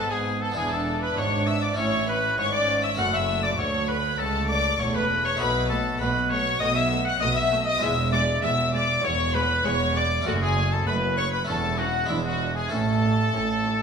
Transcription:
Already playing: double bass section G#1, harpsichord G#2 B3 D4 F#4, cello section G#2, viola section B3, violin section A4 A5, oboe A4
0.10 violin section G#4 G#5, oboe G#4
0.41 oboe A4, violin section A4 A5
0.51 harpsichord B3 D4 E4
0.56 double bass section E1, cello section E2, harpsichord E2, viola section D4, violin section G#4 G#5, oboe G#4
0.71 violin section A4 A5, oboe A4
1.01 violin section B4 B5, oboe B4
1.16 double bass section G#1, cello section G#2, harpsichord G#2, oboe C#5, violin section C#5 C#6
1.46 oboe E5, violin section E5 E6
1.62 oboe D5, violin section D5 D6
1.74 double bass section A1, cello section A2, harpsichord A3 C#4 E4, viola section C#4, oboe C#5, violin section C#6
1.78 harpsichord A2, violin section C#5
2.07 violin section B4 B5, oboe B4
2.37 double bass section G#1, harpsichord G#2, cello section G#2, viola section C#4, violin section C#5 C#6, oboe C#5
2.52 violin section D5 D6, oboe D5
2.83 violin section E5 E6, oboe E5
2.94 cello section F#2, harpsichord A3 C#4 F#4, viola section A3, violin section F#5 F#6
2.99 double bass section F#1, harpsichord F#2, oboe F#5
3.13 oboe E5, violin section E5 E6
3.43 oboe D5, violin section D5 D6
3.58 double bass section D2, harpsichord D2, cello section D2, viola section A3, oboe C#5, violin section C#5 C#6
3.88 oboe B4, violin section B4 B5
4.18 double bass section C#2, cello section C#2, harpsichord C#2, viola section A3, oboe A4, violin section A4 A5
4.49 oboe D5, violin section D5 D6
4.79 double bass section E1, harpsichord E2, cello section E2, viola section A3, oboe C#5, violin section C#5 C#6
4.95 oboe B4, violin section B4 B5
5.25 violin section C#5 C#6, oboe C#5
5.36 double bass section B1, harpsichord A3 D#4 F#4, viola section A3, oboe B4, violin section B4 B5
5.41 harpsichord B2, cello section B2
5.69 viola section A3, oboe A4, violin section A4 A5
6.00 double bass section B1, cello section B2, harpsichord B2, viola section A3, violin section B4 B5, oboe B4
6.30 viola section A3, oboe C#5, violin section C#5 C#6
6.60 double bass section B1, harpsichord B2, cello section B2, viola section A3, oboe D#5, violin section D#5 D#6
6.75 oboe E5, violin section E5 E6
6.92 viola section A3
7.05 oboe F#5, violin section F#5 F#6
7.20 double bass section B1, harpsichord B2, cello section B2, viola section A3, oboe D#5, violin section D#5 D#6
7.35 oboe E5, violin section E5 E6
7.51 viola section A3
7.66 violin section D#5 D#6, oboe D#5
7.78 harpsichord G#3 D4 E4, violin section E5, oboe E5
7.82 double bass section E1, harpsichord E2, cello section E2, viola section G#3, violin section E6
8.12 viola section G#3, violin section D5 D6, oboe D5
8.42 double bass section E1, harpsichord E2, cello section E2, viola section G#3, violin section E5 E6, oboe E5
8.73 viola section G#3, violin section D5 D6, oboe D5
9.03 double bass section E1, harpsichord E2, cello section E2, viola section G#3, violin section C#5 C#6, oboe C#5
9.34 viola section G#3, violin section B4 B5, oboe B4
9.64 double bass section E1, harpsichord E2, cello section E2, viola section G#3, oboe C#5, violin section C#5 C#6
9.94 viola section G#3, violin section D5 D6, oboe D5
10.21 harpsichord A3 C#4
10.25 double bass section F#1, harpsichord F#2, cello section F#2, viola section A3, oboe F#4, violin section F#4 F#5
10.40 violin section G#4 G#5, oboe G#4
10.56 viola section A3
10.71 violin section A4 A5, oboe A4
10.86 double bass section F#1, harpsichord F#2, cello section F#2, viola section A3, violin section B4 B5, oboe B4
11.16 viola section A3, violin section C#5 C#6, oboe C#5
11.32 oboe B4, violin section B4 B5
11.44 harpsichord A3 C#4 E4, viola section C#4, oboe A4, violin section A5
11.48 double bass section E1, harpsichord E2, cello section E2, violin section A4
11.78 viola section C#4, oboe F#4, violin section F#4 F#5
12.05 harpsichord G#3 D4 E4, oboe E4, violin section E5
12.10 double bass section E1, harpsichord E2, cello section E2, viola section D4, violin section E4
12.25 oboe F#4, violin section F#4 F#5
12.40 viola section D4
12.56 oboe G#4, violin section G#4 G#5
12.68 double bass section A1, cello section A2, harpsichord A2 A3 C#4 E4, viola section C#4, oboe A4, violin section A4 A5
13.04 viola section C#4
13.34 double bass section A1, harpsichord A2, cello section A2, viola section C#4
13.65 viola section C#4

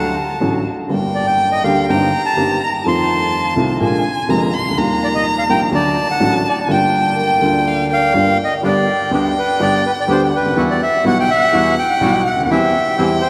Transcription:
Already playing: upright piano D2 D3 F#3 A3 F#4, bandoneon F#5, violin A5
0.40 upright piano A1 A2 D3 F#3 A3 F#4
0.88 upright piano G1 G2 D3 G3 A#3
0.92 upright piano G4, violin G5
1.15 bandoneon D5
1.27 bandoneon G5
1.52 bandoneon D#5
1.64 upright piano D2 D3 G3 A#3 G4, bandoneon F5
1.89 upright piano G1 G2 D#3 A#3 C4 G4, bandoneon G5, violin A#5
2.25 bandoneon A5
2.36 upright piano G1 G2 D#3 A#3 C4 G4
2.63 bandoneon A#5
2.84 upright piano F2 D#3 F3 A3 C4 F4, violin A5, bandoneon C6
3.56 upright piano C2 C3 D#3 A3 C4 F4
3.80 upright piano A#1 A#2 D3 G#3 A#3 F4, violin G#5
4.29 upright piano F1 F2 D3 G#3 A#3 F4, violin A#5
4.54 violin C6
4.58 upright piano C2
4.65 upright piano C#2
4.71 upright piano D2
4.76 upright piano D#2 D#3 G3 A#3 F4, violin A#5
5.04 bandoneon D5
5.15 bandoneon D#5
5.38 bandoneon F5
5.49 upright piano A#1 A#2 D#3 G3 A#3 F4, bandoneon G5
5.71 upright piano D2 D3 F#3 A3 F#4, bandoneon D5
5.75 violin A5
6.11 bandoneon F#5
6.20 upright piano A1 A2 D3 F#3 A3 F#4, bandoneon F#5
6.49 bandoneon D5
6.67 upright piano G1 G2 D3 G3 A#3
6.71 upright piano F4, violin G5, bandoneon G5
7.15 vibraphone A#4
7.39 upright piano D2 D3 G3 A#3 F4
7.52 vibraphone D5
7.66 vibraphone D5, violin F5
7.89 vibraphone A#4, violin D5, bandoneon F5
8.13 upright piano G1 G2 D3 G3 A#3 F4, vibraphone D5
8.18 violin G5
8.44 bandoneon D#5
8.63 upright piano G1 G2 D3 G3 B3 G4, bandoneon B3 D4 G4, violin G5
8.68 bandoneon D5
9.11 upright piano D2 D3 G3 B3 G4, bandoneon B3 D4 G4
9.39 bandoneon B4
9.59 upright piano G1 G2 D3 G3 B3 G4, bandoneon B3 D4 G4 D5
9.86 bandoneon B4
10.00 bandoneon D5
10.07 upright piano D2 D3 G3 B3 G4, bandoneon B3 D4 G4
10.12 bandoneon C5
10.36 upright piano C#2, bandoneon B4
10.46 upright piano D2
10.51 upright piano D#2
10.56 upright piano E2 E3 G3 B3 F#4, bandoneon G3 E4 F#4, violin F#5
10.70 bandoneon D5
10.83 bandoneon E5
11.04 upright piano B1 B2 E3 G3 B3 F#4, bandoneon G3 E4 F#4 F#5
11.20 bandoneon G5
11.31 bandoneon E5
11.52 upright piano E2 E3 G3 B3 F#4, bandoneon G3 E4 F#4
11.79 bandoneon G5
12.01 upright piano B1 B2 E3 G3 B3 F#4, bandoneon G3 E4 F#4
12.26 bandoneon F#5
12.34 upright piano C#2
12.39 upright piano D2
12.44 upright piano D#2, bandoneon F#5
12.50 upright piano E2 E3 G3 C4 G4, bandoneon E3 C4 E4 G4 E5, violin G5
12.97 upright piano E2 E3 G3 C4 G4, bandoneon E3 C4 E4 G4
13.21 bandoneon C5

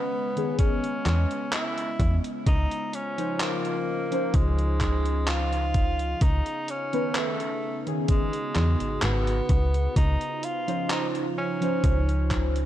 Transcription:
Already playing: ambient pad C#3 G#3 B3 C#4 D#5, tenor saxophone B3
0.36 synth keys D#3 B3 C#4 G#4, closed hi-hat
0.59 tenor saxophone C#4, kick, closed hi-hat
0.84 closed hi-hat
1.06 fm bass E2, clap, closed hi-hat
1.31 closed hi-hat
1.53 tenor saxophone E4, clap, closed hi-hat
1.78 closed hi-hat
1.99 fm bass E2, kick, closed hi-hat
2.24 closed hi-hat
2.46 fm bass C#2, ambient pad C#3 F4 C5, tenor saxophone D#4, kick, closed hi-hat
2.71 closed hi-hat
2.93 tenor saxophone C#4, closed hi-hat
3.17 synth keys F3 C#4 D#4 C5, closed hi-hat
3.40 tenor saxophone A#3, clap, closed hi-hat
3.65 closed hi-hat
4.11 synth keys F3 C#4 D#4 C5, closed hi-hat
4.34 fm bass C#2, tenor saxophone G#3, kick, closed hi-hat
4.58 closed hi-hat
4.81 kick, clap, closed hi-hat
5.06 closed hi-hat
5.27 tenor saxophone F4, clap, closed hi-hat
5.53 closed hi-hat
5.74 kick, closed hi-hat
5.99 closed hi-hat
6.21 fm bass C#2, ambient pad C#3 B3 C#4 D#4 G#4, tenor saxophone D#4, kick, closed hi-hat
6.46 closed hi-hat
6.68 tenor saxophone C#4, closed hi-hat
6.93 synth keys D#3 B3 C#4 B4, closed hi-hat
7.15 tenor saxophone A3, clap, closed hi-hat
7.40 closed hi-hat
7.86 synth keys D#3 B3 C#4 G#4, closed hi-hat
8.08 tenor saxophone G#3, ambient pad F#4, kick, closed hi-hat
8.33 closed hi-hat
8.55 fm bass E2, clap, closed hi-hat
8.80 fm bass G#1, closed hi-hat
9.02 fm bass G#1, tenor saxophone B3, clap, closed hi-hat
9.27 closed hi-hat
9.49 fm bass C#2, kick, closed hi-hat
9.74 closed hi-hat
9.96 fm bass C#2, ambient pad D#4 F4 C5, tenor saxophone D#4, kick, closed hi-hat
10.21 closed hi-hat
10.43 tenor saxophone F4, closed hi-hat
10.67 synth keys F3 C#4 D#4 C5, closed hi-hat
10.90 tenor saxophone D#4, clap, closed hi-hat
11.15 closed hi-hat
11.38 tenor saxophone C#4
11.60 synth keys F3 C#4 D#4 C5, closed hi-hat
11.84 fm bass C#2, kick, closed hi-hat
12.09 closed hi-hat
12.31 kick, clap, closed hi-hat
12.56 closed hi-hat

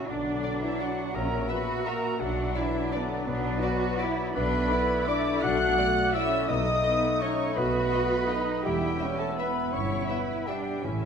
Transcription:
Already playing: harp A#2 A#3 E4 F#4 C#5 E5 F#5 E6
0.02 harp C#4
0.09 double bass section B1, harp B2, french horn section D3, bassoon F#3, clarinet D4, cello section D4, viola section D4, violin section D5, flute D5, oboe D5
0.18 harp F#3
0.27 harp B3
0.35 harp F#4
0.44 violin section D5, harp D5
0.54 harp B4
0.62 french horn section E3, clarinet E4, viola section E4, violin section E5, flute E5, harp F#5
0.72 harp D6
0.79 french horn section F#3, clarinet F#4, viola section F#4, violin section D5 F#5, flute F#5, harp F#5
0.90 harp D5
0.99 harp F#4
1.07 harp B3
1.15 double bass section A#1, harp A#2, french horn section A#3, cello section C#4, clarinet A#4, viola section A#4, oboe E5, violin section A#5, flute A#5
1.23 harp A#3
1.32 harp C#4
1.41 harp F#4
1.49 french horn section B3, cello section F#4, clarinet B4, viola section B4, violin section E5 B5, harp E5, flute B5
1.59 harp C#5
1.68 harp F#5
1.77 harp E6
1.86 french horn section A#3, clarinet A#4, viola section A#4, violin section E5 A#5, harp F#5, flute A#5
1.95 harp E5
2.04 harp F#4
2.13 harp C#4
2.20 double bass section B1, harp B2, bassoon F#3, french horn section F#3, cello section D4, clarinet F#4, viola section F#4, flute F#5, violin section F#5
2.29 harp F#3
2.38 harp B3
2.47 harp F#4
2.56 french horn section E3, clarinet E4, viola section E4, harp D5, violin section D5 E5, flute E5
2.65 harp B4
2.74 harp F#5
2.84 harp D6
2.92 french horn section D3, cello section B3, clarinet D4, viola section D4, violin section D5, flute D5, oboe D5, harp F#5
3.02 harp D5
3.11 harp F#4
3.19 harp B3
3.27 double bass section B1, harp B2, french horn section B2, clarinet B3, viola section B3, cello section D4, violin section B4, flute B4
3.36 harp F#3
3.44 harp B3
3.53 harp F#4
3.62 cello section F#4, harp D5, violin section D5
3.71 harp B4
3.81 harp F#5
3.90 harp D6
3.99 cello section E4, violin section D5, harp F#5
4.08 harp D5
4.17 harp F#4
4.27 harp B3
4.34 double bass section B1, harp B2, bassoon A3, french horn section B3, cello section D4, clarinet B4, viola section B4, oboe D5, flute B5, violin section B5
4.44 harp F#3
4.53 harp A3
4.62 harp F#4
4.71 cello section E4, harp D5, violin section D5
4.81 harp A4
4.90 harp F#5
4.99 harp D6
5.08 french horn section D4, viola section D5, clarinet D5, violin section D5 D6, harp F#5, flute D6
5.17 harp D5
5.26 harp F#4
5.34 harp A3
5.42 double bass section B1, harp B2, cello section D4, french horn section F#4, viola section F#5, clarinet F#5, flute F#6, violin section F#6
5.51 harp F#3
5.60 harp A3
5.78 cello section A3, harp D5, violin section D5
5.87 harp A4
6.05 harp D6
6.14 cello section C#4, french horn section E4, violin section D5 E6, clarinet E5, viola section E5, flute E6
6.24 harp D5
6.32 harp F#4
6.41 harp A3
6.48 double bass section B1, harp B2, bassoon A3, cello section B3, french horn section D#4, clarinet D#5, viola section D#5, oboe D#5, flute D#6, violin section D#6
6.57 harp F#3
6.66 harp A3
6.75 harp F#4
6.84 cello section B3, violin section D#5, harp D#5
6.94 harp A4
7.04 harp F#5
7.13 harp D#6
7.21 french horn section C#4, cello section D#4, clarinet C#5, viola section C#5, violin section D#5 C#6, harp F#5, flute C#6
7.31 harp D#5
7.48 harp A3
7.56 double bass section B1, harp B2, french horn section B3, cello section F#4, viola section B4, clarinet B4, flute B5, violin section B5
7.65 harp F#3
7.75 harp A3
7.84 harp F#4
7.93 violin section D#5
8.02 harp A4
8.12 harp F#5
8.21 harp D#6
8.29 cello section D#4, violin section D#5, harp F#5
8.39 harp D#5
8.48 harp F#4
8.56 harp A3
8.64 double bass section E1, harp E2, french horn section G3, bassoon B3, cello section E4, viola section G4, clarinet G4, oboe E5, violin section G5, flute G5
8.74 harp B2
8.83 harp B3
8.91 harp E4
8.99 cello section C#4, violin section E5, harp E5
9.10 harp B4
9.18 french horn section A3, clarinet A4, viola section A4, harp E5, violin section A5, flute A5
9.29 clarinet C#5, harp E6
9.37 cello section B3, french horn section B3, clarinet B4, viola section B4, harp E5, violin section E5 B5, flute B5
9.48 harp E4
9.57 harp B3
9.65 harp B2
9.72 double bass section G1, harp G2, french horn section C#4, cello section E4, clarinet C#5, viola section C#5, violin section C#6, flute C#6
9.83 harp G3
9.91 harp B3
10.00 harp E4
10.08 french horn section B3, viola section B4, clarinet B4, violin section E5 B5, harp E5, flute B5
10.19 harp B4
10.28 harp E5
10.38 harp E6
10.47 french horn section G3, cello section D4, viola section G4, clarinet G4, violin section E5 G5, harp E5, flute G5
10.57 harp E4
10.66 harp B3
10.75 harp G3
10.84 double bass section A1, timpani A2, harp A2, french horn section E3, cello section C#4, bassoon C#4, clarinet E4, viola section E4, violin section E5, flute E5, oboe E5
10.91 timpani A2, harp E3
10.99 timpani A2, harp C#4

